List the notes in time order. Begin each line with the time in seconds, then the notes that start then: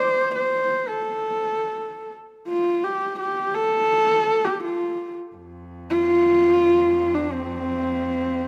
0.00 C5
0.35 C5
0.88 A4
2.48 F4
2.84 G4
3.20 G4
3.55 A4
4.45 G4
4.64 F4
5.35 F2
5.90 F4
7.15 D4
7.33 C4